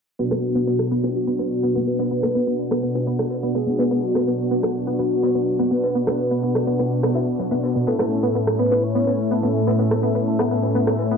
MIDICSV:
0, 0, Header, 1, 6, 480
1, 0, Start_track
1, 0, Key_signature, 2, "minor"
1, 0, Tempo, 480000
1, 191, Time_signature, 4, 2, 24, 8
1, 11174, End_track
2, 0, Start_track
2, 0, Title_t, "Soft synth lead"
2, 0, Program_c, 0, 80
2, 193, Note_on_c, 0, 66, 94
2, 1145, Note_off_c, 0, 66, 0
2, 1151, Note_on_c, 0, 66, 93
2, 1871, Note_on_c, 0, 71, 108
2, 1886, Note_off_c, 0, 66, 0
2, 3311, Note_off_c, 0, 71, 0
2, 3552, Note_on_c, 0, 68, 90
2, 4030, Note_on_c, 0, 66, 93
2, 4045, Note_off_c, 0, 68, 0
2, 4982, Note_off_c, 0, 66, 0
2, 4988, Note_on_c, 0, 66, 93
2, 5708, Note_on_c, 0, 71, 110
2, 5723, Note_off_c, 0, 66, 0
2, 7150, Note_off_c, 0, 71, 0
2, 7870, Note_on_c, 0, 69, 100
2, 8592, Note_on_c, 0, 71, 98
2, 8606, Note_off_c, 0, 69, 0
2, 8833, Note_on_c, 0, 73, 110
2, 8848, Note_off_c, 0, 71, 0
2, 9312, Note_on_c, 0, 69, 96
2, 9327, Note_off_c, 0, 73, 0
2, 9787, Note_off_c, 0, 69, 0
2, 9793, Note_on_c, 0, 69, 96
2, 10238, Note_off_c, 0, 69, 0
2, 10272, Note_on_c, 0, 69, 81
2, 10952, Note_off_c, 0, 69, 0
2, 11174, End_track
3, 0, Start_track
3, 0, Title_t, "Analog synth pad"
3, 0, Program_c, 1, 89
3, 192, Note_on_c, 1, 66, 71
3, 192, Note_on_c, 1, 78, 86
3, 193, Note_on_c, 1, 47, 79
3, 193, Note_on_c, 1, 59, 73
3, 193, Note_on_c, 1, 62, 72
3, 7832, Note_off_c, 1, 47, 0
3, 7832, Note_off_c, 1, 59, 0
3, 7832, Note_off_c, 1, 62, 0
3, 7832, Note_off_c, 1, 66, 0
3, 7832, Note_off_c, 1, 78, 0
3, 7871, Note_on_c, 1, 45, 78
3, 7871, Note_on_c, 1, 57, 72
3, 7871, Note_on_c, 1, 61, 72
3, 7871, Note_on_c, 1, 64, 74
3, 7871, Note_on_c, 1, 76, 89
3, 11174, Note_off_c, 1, 45, 0
3, 11174, Note_off_c, 1, 57, 0
3, 11174, Note_off_c, 1, 61, 0
3, 11174, Note_off_c, 1, 64, 0
3, 11174, Note_off_c, 1, 76, 0
3, 11174, End_track
4, 0, Start_track
4, 0, Title_t, "Supersaw synth"
4, 0, Program_c, 2, 81
4, 191, Note_on_c, 2, 47, 71
4, 191, Note_on_c, 2, 59, 68
4, 191, Note_on_c, 2, 62, 66
4, 191, Note_on_c, 2, 66, 79
4, 4002, Note_off_c, 2, 47, 0
4, 4002, Note_off_c, 2, 59, 0
4, 4003, Note_off_c, 2, 62, 0
4, 4003, Note_off_c, 2, 66, 0
4, 4031, Note_on_c, 2, 47, 70
4, 4031, Note_on_c, 2, 62, 66
4, 4031, Note_on_c, 2, 66, 81
4, 4032, Note_on_c, 2, 59, 68
4, 7843, Note_off_c, 2, 47, 0
4, 7843, Note_off_c, 2, 59, 0
4, 7843, Note_off_c, 2, 62, 0
4, 7843, Note_off_c, 2, 66, 0
4, 7871, Note_on_c, 2, 45, 74
4, 7871, Note_on_c, 2, 57, 67
4, 7871, Note_on_c, 2, 61, 68
4, 7871, Note_on_c, 2, 64, 80
4, 11174, Note_off_c, 2, 45, 0
4, 11174, Note_off_c, 2, 57, 0
4, 11174, Note_off_c, 2, 61, 0
4, 11174, Note_off_c, 2, 64, 0
4, 11174, End_track
5, 0, Start_track
5, 0, Title_t, "Synth pluck"
5, 0, Program_c, 3, 84
5, 191, Note_on_c, 3, 59, 97
5, 234, Note_off_c, 3, 59, 0
5, 312, Note_on_c, 3, 59, 74
5, 354, Note_off_c, 3, 59, 0
5, 552, Note_on_c, 3, 59, 98
5, 594, Note_off_c, 3, 59, 0
5, 672, Note_on_c, 3, 59, 79
5, 714, Note_off_c, 3, 59, 0
5, 912, Note_on_c, 3, 59, 98
5, 954, Note_off_c, 3, 59, 0
5, 1032, Note_on_c, 3, 59, 74
5, 1074, Note_off_c, 3, 59, 0
5, 1272, Note_on_c, 3, 59, 97
5, 1314, Note_off_c, 3, 59, 0
5, 1391, Note_on_c, 3, 59, 73
5, 1434, Note_off_c, 3, 59, 0
5, 1631, Note_on_c, 3, 59, 94
5, 1674, Note_off_c, 3, 59, 0
5, 1751, Note_on_c, 3, 59, 75
5, 1794, Note_off_c, 3, 59, 0
5, 1991, Note_on_c, 3, 59, 97
5, 2034, Note_off_c, 3, 59, 0
5, 2110, Note_on_c, 3, 59, 77
5, 2153, Note_off_c, 3, 59, 0
5, 2351, Note_on_c, 3, 59, 100
5, 2394, Note_off_c, 3, 59, 0
5, 2471, Note_on_c, 3, 59, 76
5, 2514, Note_off_c, 3, 59, 0
5, 2711, Note_on_c, 3, 59, 101
5, 2754, Note_off_c, 3, 59, 0
5, 2831, Note_on_c, 3, 59, 73
5, 2874, Note_off_c, 3, 59, 0
5, 3070, Note_on_c, 3, 59, 95
5, 3113, Note_off_c, 3, 59, 0
5, 3191, Note_on_c, 3, 59, 73
5, 3234, Note_off_c, 3, 59, 0
5, 3432, Note_on_c, 3, 59, 94
5, 3474, Note_off_c, 3, 59, 0
5, 3551, Note_on_c, 3, 59, 79
5, 3594, Note_off_c, 3, 59, 0
5, 3792, Note_on_c, 3, 59, 99
5, 3834, Note_off_c, 3, 59, 0
5, 3912, Note_on_c, 3, 59, 75
5, 3954, Note_off_c, 3, 59, 0
5, 4152, Note_on_c, 3, 59, 100
5, 4194, Note_off_c, 3, 59, 0
5, 4271, Note_on_c, 3, 59, 73
5, 4314, Note_off_c, 3, 59, 0
5, 4511, Note_on_c, 3, 59, 98
5, 4554, Note_off_c, 3, 59, 0
5, 4631, Note_on_c, 3, 59, 74
5, 4674, Note_off_c, 3, 59, 0
5, 4871, Note_on_c, 3, 59, 98
5, 4914, Note_off_c, 3, 59, 0
5, 4991, Note_on_c, 3, 59, 82
5, 5034, Note_off_c, 3, 59, 0
5, 5231, Note_on_c, 3, 59, 96
5, 5274, Note_off_c, 3, 59, 0
5, 5352, Note_on_c, 3, 59, 72
5, 5394, Note_off_c, 3, 59, 0
5, 5591, Note_on_c, 3, 59, 97
5, 5634, Note_off_c, 3, 59, 0
5, 5710, Note_on_c, 3, 59, 71
5, 5753, Note_off_c, 3, 59, 0
5, 5951, Note_on_c, 3, 59, 97
5, 5994, Note_off_c, 3, 59, 0
5, 6071, Note_on_c, 3, 59, 75
5, 6114, Note_off_c, 3, 59, 0
5, 6311, Note_on_c, 3, 59, 96
5, 6354, Note_off_c, 3, 59, 0
5, 6430, Note_on_c, 3, 59, 79
5, 6474, Note_off_c, 3, 59, 0
5, 6671, Note_on_c, 3, 59, 98
5, 6714, Note_off_c, 3, 59, 0
5, 6792, Note_on_c, 3, 59, 74
5, 6834, Note_off_c, 3, 59, 0
5, 7032, Note_on_c, 3, 59, 96
5, 7074, Note_off_c, 3, 59, 0
5, 7151, Note_on_c, 3, 64, 72
5, 7215, Note_off_c, 3, 64, 0
5, 7391, Note_on_c, 3, 54, 77
5, 7434, Note_off_c, 3, 54, 0
5, 7511, Note_on_c, 3, 71, 72
5, 7575, Note_off_c, 3, 71, 0
5, 7752, Note_on_c, 3, 47, 75
5, 7815, Note_off_c, 3, 47, 0
5, 7872, Note_on_c, 3, 59, 100
5, 7914, Note_off_c, 3, 59, 0
5, 7993, Note_on_c, 3, 59, 73
5, 8034, Note_off_c, 3, 59, 0
5, 8231, Note_on_c, 3, 59, 97
5, 8274, Note_off_c, 3, 59, 0
5, 8351, Note_on_c, 3, 59, 77
5, 8394, Note_off_c, 3, 59, 0
5, 8592, Note_on_c, 3, 59, 99
5, 8634, Note_off_c, 3, 59, 0
5, 8712, Note_on_c, 3, 59, 72
5, 8754, Note_off_c, 3, 59, 0
5, 8952, Note_on_c, 3, 59, 99
5, 8994, Note_off_c, 3, 59, 0
5, 9071, Note_on_c, 3, 59, 71
5, 9114, Note_off_c, 3, 59, 0
5, 9311, Note_on_c, 3, 59, 95
5, 9354, Note_off_c, 3, 59, 0
5, 9432, Note_on_c, 3, 59, 73
5, 9474, Note_off_c, 3, 59, 0
5, 9671, Note_on_c, 3, 59, 100
5, 9714, Note_off_c, 3, 59, 0
5, 9791, Note_on_c, 3, 59, 80
5, 9834, Note_off_c, 3, 59, 0
5, 10030, Note_on_c, 3, 59, 97
5, 10074, Note_off_c, 3, 59, 0
5, 10151, Note_on_c, 3, 59, 76
5, 10194, Note_off_c, 3, 59, 0
5, 10391, Note_on_c, 3, 59, 99
5, 10434, Note_off_c, 3, 59, 0
5, 10511, Note_on_c, 3, 59, 73
5, 10554, Note_off_c, 3, 59, 0
5, 10751, Note_on_c, 3, 59, 99
5, 10794, Note_off_c, 3, 59, 0
5, 10872, Note_on_c, 3, 59, 75
5, 10914, Note_off_c, 3, 59, 0
5, 11112, Note_on_c, 3, 59, 97
5, 11154, Note_off_c, 3, 59, 0
5, 11174, End_track
6, 0, Start_track
6, 0, Title_t, "Drums"
6, 191, Note_on_c, 9, 42, 89
6, 291, Note_off_c, 9, 42, 0
6, 307, Note_on_c, 9, 38, 49
6, 307, Note_on_c, 9, 56, 79
6, 312, Note_on_c, 9, 37, 55
6, 313, Note_on_c, 9, 63, 66
6, 407, Note_off_c, 9, 38, 0
6, 407, Note_off_c, 9, 56, 0
6, 412, Note_off_c, 9, 37, 0
6, 413, Note_off_c, 9, 63, 0
6, 430, Note_on_c, 9, 42, 58
6, 530, Note_off_c, 9, 42, 0
6, 675, Note_on_c, 9, 42, 78
6, 775, Note_off_c, 9, 42, 0
6, 791, Note_on_c, 9, 37, 57
6, 891, Note_off_c, 9, 37, 0
6, 912, Note_on_c, 9, 42, 67
6, 1012, Note_off_c, 9, 42, 0
6, 1038, Note_on_c, 9, 60, 68
6, 1138, Note_off_c, 9, 60, 0
6, 1154, Note_on_c, 9, 42, 78
6, 1254, Note_off_c, 9, 42, 0
6, 1389, Note_on_c, 9, 56, 69
6, 1392, Note_on_c, 9, 38, 36
6, 1399, Note_on_c, 9, 42, 66
6, 1489, Note_off_c, 9, 56, 0
6, 1492, Note_off_c, 9, 38, 0
6, 1499, Note_off_c, 9, 42, 0
6, 1633, Note_on_c, 9, 42, 80
6, 1733, Note_off_c, 9, 42, 0
6, 1748, Note_on_c, 9, 38, 40
6, 1759, Note_on_c, 9, 63, 61
6, 1848, Note_off_c, 9, 38, 0
6, 1859, Note_off_c, 9, 63, 0
6, 1874, Note_on_c, 9, 42, 57
6, 1974, Note_off_c, 9, 42, 0
6, 1994, Note_on_c, 9, 38, 47
6, 1995, Note_on_c, 9, 56, 78
6, 2094, Note_off_c, 9, 38, 0
6, 2095, Note_off_c, 9, 56, 0
6, 2112, Note_on_c, 9, 42, 81
6, 2212, Note_off_c, 9, 42, 0
6, 2231, Note_on_c, 9, 37, 56
6, 2232, Note_on_c, 9, 56, 92
6, 2237, Note_on_c, 9, 63, 57
6, 2331, Note_off_c, 9, 37, 0
6, 2332, Note_off_c, 9, 56, 0
6, 2337, Note_off_c, 9, 63, 0
6, 2586, Note_on_c, 9, 42, 88
6, 2686, Note_off_c, 9, 42, 0
6, 2710, Note_on_c, 9, 37, 58
6, 2810, Note_off_c, 9, 37, 0
6, 2825, Note_on_c, 9, 42, 60
6, 2925, Note_off_c, 9, 42, 0
6, 2951, Note_on_c, 9, 60, 64
6, 3051, Note_off_c, 9, 60, 0
6, 3066, Note_on_c, 9, 42, 76
6, 3166, Note_off_c, 9, 42, 0
6, 3191, Note_on_c, 9, 37, 56
6, 3195, Note_on_c, 9, 38, 51
6, 3291, Note_off_c, 9, 37, 0
6, 3295, Note_off_c, 9, 38, 0
6, 3303, Note_on_c, 9, 56, 72
6, 3403, Note_off_c, 9, 56, 0
6, 3550, Note_on_c, 9, 46, 78
6, 3650, Note_off_c, 9, 46, 0
6, 3666, Note_on_c, 9, 63, 58
6, 3674, Note_on_c, 9, 38, 36
6, 3766, Note_off_c, 9, 63, 0
6, 3774, Note_off_c, 9, 38, 0
6, 3785, Note_on_c, 9, 42, 66
6, 3786, Note_on_c, 9, 56, 77
6, 3885, Note_off_c, 9, 42, 0
6, 3886, Note_off_c, 9, 56, 0
6, 3911, Note_on_c, 9, 38, 51
6, 4011, Note_off_c, 9, 38, 0
6, 4029, Note_on_c, 9, 42, 74
6, 4129, Note_off_c, 9, 42, 0
6, 4148, Note_on_c, 9, 63, 60
6, 4151, Note_on_c, 9, 37, 60
6, 4155, Note_on_c, 9, 38, 47
6, 4160, Note_on_c, 9, 56, 84
6, 4248, Note_off_c, 9, 63, 0
6, 4251, Note_off_c, 9, 37, 0
6, 4255, Note_off_c, 9, 38, 0
6, 4260, Note_off_c, 9, 56, 0
6, 4273, Note_on_c, 9, 42, 60
6, 4373, Note_off_c, 9, 42, 0
6, 4508, Note_on_c, 9, 42, 82
6, 4608, Note_off_c, 9, 42, 0
6, 4631, Note_on_c, 9, 37, 61
6, 4731, Note_off_c, 9, 37, 0
6, 4750, Note_on_c, 9, 42, 70
6, 4850, Note_off_c, 9, 42, 0
6, 4868, Note_on_c, 9, 60, 62
6, 4968, Note_off_c, 9, 60, 0
6, 4991, Note_on_c, 9, 42, 76
6, 5091, Note_off_c, 9, 42, 0
6, 5233, Note_on_c, 9, 38, 34
6, 5234, Note_on_c, 9, 56, 80
6, 5240, Note_on_c, 9, 42, 59
6, 5333, Note_off_c, 9, 38, 0
6, 5334, Note_off_c, 9, 56, 0
6, 5340, Note_off_c, 9, 42, 0
6, 5472, Note_on_c, 9, 42, 71
6, 5572, Note_off_c, 9, 42, 0
6, 5596, Note_on_c, 9, 38, 40
6, 5596, Note_on_c, 9, 63, 53
6, 5696, Note_off_c, 9, 38, 0
6, 5696, Note_off_c, 9, 63, 0
6, 5707, Note_on_c, 9, 42, 64
6, 5807, Note_off_c, 9, 42, 0
6, 5832, Note_on_c, 9, 38, 50
6, 5836, Note_on_c, 9, 56, 80
6, 5932, Note_off_c, 9, 38, 0
6, 5936, Note_off_c, 9, 56, 0
6, 5953, Note_on_c, 9, 42, 80
6, 6053, Note_off_c, 9, 42, 0
6, 6071, Note_on_c, 9, 37, 61
6, 6074, Note_on_c, 9, 63, 54
6, 6079, Note_on_c, 9, 56, 89
6, 6171, Note_off_c, 9, 37, 0
6, 6174, Note_off_c, 9, 63, 0
6, 6179, Note_off_c, 9, 56, 0
6, 6190, Note_on_c, 9, 42, 61
6, 6289, Note_off_c, 9, 42, 0
6, 6434, Note_on_c, 9, 42, 81
6, 6534, Note_off_c, 9, 42, 0
6, 6552, Note_on_c, 9, 37, 61
6, 6652, Note_off_c, 9, 37, 0
6, 6669, Note_on_c, 9, 42, 66
6, 6769, Note_off_c, 9, 42, 0
6, 6796, Note_on_c, 9, 60, 63
6, 6896, Note_off_c, 9, 60, 0
6, 6904, Note_on_c, 9, 42, 79
6, 7004, Note_off_c, 9, 42, 0
6, 7032, Note_on_c, 9, 37, 63
6, 7032, Note_on_c, 9, 38, 52
6, 7132, Note_off_c, 9, 37, 0
6, 7132, Note_off_c, 9, 38, 0
6, 7145, Note_on_c, 9, 56, 78
6, 7245, Note_off_c, 9, 56, 0
6, 7387, Note_on_c, 9, 42, 69
6, 7395, Note_on_c, 9, 38, 92
6, 7487, Note_off_c, 9, 42, 0
6, 7495, Note_off_c, 9, 38, 0
6, 7507, Note_on_c, 9, 63, 58
6, 7513, Note_on_c, 9, 38, 98
6, 7513, Note_on_c, 9, 42, 78
6, 7607, Note_off_c, 9, 63, 0
6, 7613, Note_off_c, 9, 38, 0
6, 7613, Note_off_c, 9, 42, 0
6, 7634, Note_on_c, 9, 42, 64
6, 7634, Note_on_c, 9, 56, 83
6, 7734, Note_off_c, 9, 42, 0
6, 7734, Note_off_c, 9, 56, 0
6, 7749, Note_on_c, 9, 38, 44
6, 7849, Note_off_c, 9, 38, 0
6, 7870, Note_on_c, 9, 42, 88
6, 7970, Note_off_c, 9, 42, 0
6, 7990, Note_on_c, 9, 63, 58
6, 7992, Note_on_c, 9, 37, 62
6, 7996, Note_on_c, 9, 56, 89
6, 7998, Note_on_c, 9, 38, 53
6, 8090, Note_off_c, 9, 63, 0
6, 8092, Note_off_c, 9, 37, 0
6, 8096, Note_off_c, 9, 56, 0
6, 8098, Note_off_c, 9, 38, 0
6, 8112, Note_on_c, 9, 42, 66
6, 8212, Note_off_c, 9, 42, 0
6, 8349, Note_on_c, 9, 42, 74
6, 8449, Note_off_c, 9, 42, 0
6, 8472, Note_on_c, 9, 37, 66
6, 8572, Note_off_c, 9, 37, 0
6, 8587, Note_on_c, 9, 42, 66
6, 8687, Note_off_c, 9, 42, 0
6, 8714, Note_on_c, 9, 60, 56
6, 8814, Note_off_c, 9, 60, 0
6, 8834, Note_on_c, 9, 42, 82
6, 8934, Note_off_c, 9, 42, 0
6, 9071, Note_on_c, 9, 42, 62
6, 9071, Note_on_c, 9, 56, 75
6, 9073, Note_on_c, 9, 38, 38
6, 9171, Note_off_c, 9, 42, 0
6, 9171, Note_off_c, 9, 56, 0
6, 9173, Note_off_c, 9, 38, 0
6, 9429, Note_on_c, 9, 63, 56
6, 9432, Note_on_c, 9, 38, 41
6, 9529, Note_off_c, 9, 63, 0
6, 9532, Note_off_c, 9, 38, 0
6, 9550, Note_on_c, 9, 42, 56
6, 9650, Note_off_c, 9, 42, 0
6, 9669, Note_on_c, 9, 38, 51
6, 9676, Note_on_c, 9, 56, 80
6, 9769, Note_off_c, 9, 38, 0
6, 9776, Note_off_c, 9, 56, 0
6, 9793, Note_on_c, 9, 42, 84
6, 9893, Note_off_c, 9, 42, 0
6, 9910, Note_on_c, 9, 56, 80
6, 9912, Note_on_c, 9, 37, 62
6, 9914, Note_on_c, 9, 63, 55
6, 10010, Note_off_c, 9, 56, 0
6, 10012, Note_off_c, 9, 37, 0
6, 10014, Note_off_c, 9, 63, 0
6, 10270, Note_on_c, 9, 42, 74
6, 10370, Note_off_c, 9, 42, 0
6, 10392, Note_on_c, 9, 37, 66
6, 10492, Note_off_c, 9, 37, 0
6, 10630, Note_on_c, 9, 60, 56
6, 10730, Note_off_c, 9, 60, 0
6, 10750, Note_on_c, 9, 42, 77
6, 10850, Note_off_c, 9, 42, 0
6, 10872, Note_on_c, 9, 37, 62
6, 10873, Note_on_c, 9, 38, 50
6, 10972, Note_off_c, 9, 37, 0
6, 10973, Note_off_c, 9, 38, 0
6, 10987, Note_on_c, 9, 56, 72
6, 11000, Note_on_c, 9, 42, 69
6, 11087, Note_off_c, 9, 56, 0
6, 11100, Note_off_c, 9, 42, 0
6, 11174, End_track
0, 0, End_of_file